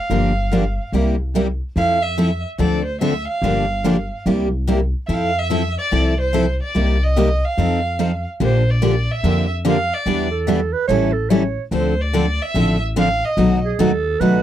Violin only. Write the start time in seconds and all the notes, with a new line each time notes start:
Already playing: F5
1.78 F5
2.02 E5
2.59 D5
2.85 C5
3.01 E5
3.27 F5
5.07 E5
5.13 F5
5.39 E5
5.78 D5
6.20 C5
6.62 D5
7.03 D#5
7.45 F5
8.44 C5
8.71 D5
9.11 E5
9.68 F5
9.94 D5
11.75 C5
12.01 D5
12.42 E5
12.99 F5
13.25 D#5